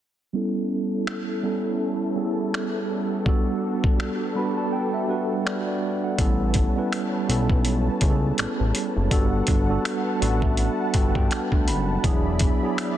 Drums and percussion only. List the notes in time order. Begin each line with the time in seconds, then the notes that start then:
1.07 finger snap
2.54 finger snap
3.26 kick
3.84 kick
4.00 finger snap
5.47 finger snap
6.19 kick, closed hi-hat
6.54 kick, closed hi-hat
6.92 finger snap, closed hi-hat
7.30 closed hi-hat
7.50 kick
7.65 closed hi-hat
8.01 kick, closed hi-hat
8.38 finger snap, closed hi-hat
8.75 closed hi-hat
9.11 kick, closed hi-hat
9.47 kick, closed hi-hat
9.85 finger snap, closed hi-hat
10.22 closed hi-hat
10.42 kick
10.57 closed hi-hat
10.94 kick, closed hi-hat
11.15 kick
11.31 finger snap, closed hi-hat
11.52 kick
11.68 closed hi-hat
12.04 kick, closed hi-hat
12.39 kick, closed hi-hat
12.78 finger snap, closed hi-hat